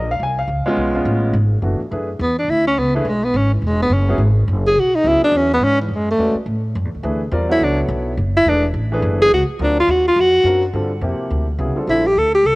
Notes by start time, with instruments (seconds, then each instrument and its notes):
Already playing: upright bass A#1, grand piano D#5
0.11 grand piano F5
0.20 upright bass C2, grand piano G#5
0.39 grand piano F5
0.48 upright bass C#2
0.66 grand piano G#3 B3 C#4 F4, muted upright bass stroke
0.77 upright bass B1
0.94 grand piano G#3 B3 C#4 F4
1.05 upright bass A1
1.33 upright bass G#1
1.62 upright bass F#1, grand piano E3 A3 B3 D4 F#4
1.80 muted upright bass stroke
1.91 upright bass F#2, grand piano A3 D4 E4 G#4 B4
2.19 upright bass E2, tenor saxophone B3
2.39 tenor saxophone D4
2.48 upright bass D2, tenor saxophone E4
2.67 tenor saxophone C#4
2.77 upright bass C#2, tenor saxophone B3
2.95 tenor saxophone E3, grand piano A3 D4 E4 G#4 B4
3.05 upright bass B1, tenor saxophone G#3
3.24 tenor saxophone B3
3.34 upright bass G#1, tenor saxophone C#4
3.54 tenor saxophone E3
3.62 upright bass E1
3.66 tenor saxophone G#3
3.82 tenor saxophone B3
3.90 upright bass F#1, tenor saxophone C#4
4.08 grand piano F#3 B3 C#4 E4 G#4
4.18 upright bass G#1
4.48 upright bass F#1
4.67 tenor saxophone G#4
4.75 upright bass B1
4.79 tenor saxophone F#4
4.95 tenor saxophone D#4
5.04 upright bass C#2, grand piano F#3 B3 C#4 E4 G#4, tenor saxophone E4
5.21 tenor saxophone D4, muted upright bass stroke
5.32 upright bass E2
5.37 tenor saxophone C#4
5.53 tenor saxophone B3
5.60 upright bass G#2, tenor saxophone C#4
5.81 tenor saxophone E3
5.88 upright bass F#2
5.93 tenor saxophone G#3
6.11 tenor saxophone A3
6.18 upright bass E2, grand piano G#3 C#4 F#4 B4 D5
6.34 muted upright bass stroke
6.46 upright bass A2
6.75 upright bass F#2
6.85 upright bass E2
6.95 upright bass D2
7.03 upright bass D2, grand piano E3 A3 D4 G#4 B4
7.32 upright bass E2, grand piano G3 C4 F4 A#4 D5
7.49 grand piano F#3 B3 E4 A4 C#5, tenor saxophone E4
7.60 upright bass C#2
7.64 tenor saxophone D4
7.88 upright bass B1
8.17 upright bass F#1
8.37 tenor saxophone E4
8.45 upright bass E1, grand piano E3 A3 D4 G#4 B4, tenor saxophone D4
8.74 upright bass A1
8.92 grand piano E3 A3 D4 G#4 B4
9.02 upright bass F#1
9.22 tenor saxophone G#4
9.31 upright bass C#2, tenor saxophone F#4
9.59 upright bass D2, grand piano F#3 C4 D4 F4 A#4, tenor saxophone D4
9.80 tenor saxophone F4
9.87 upright bass D#2, tenor saxophone F#4
10.07 tenor saxophone F4
10.16 upright bass F2, tenor saxophone F#4
10.43 upright bass F#2, grand piano F#3 C4 D4 F4 A#4
10.73 upright bass G2, grand piano D3 G3 C4 F4 A4
11.01 upright bass F2, grand piano C3 F3 A#3 E4 G4
11.20 muted upright bass stroke
11.30 upright bass D2
11.59 upright bass C2, grand piano C#3 F#3 B3 E4 G#4
11.76 grand piano D3 G3 C4 F4 A4, muted upright bass stroke
11.87 upright bass A#1, grand piano D3 G3 C4 F4 A4, tenor saxophone E4
12.06 tenor saxophone G4
12.16 upright bass D2, tenor saxophone A4
12.35 tenor saxophone G4
12.43 upright bass C2, tenor saxophone A4